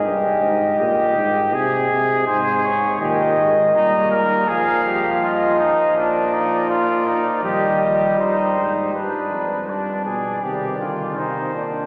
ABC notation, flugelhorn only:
X:1
M:4/4
L:1/8
Q:1/4=81
K:Ebmix
V:1 name="Flugelhorn"
G2 G2 A2 A2 | G z E B A G F E | =D E F E G G E2 | =D2 D A G F E D |]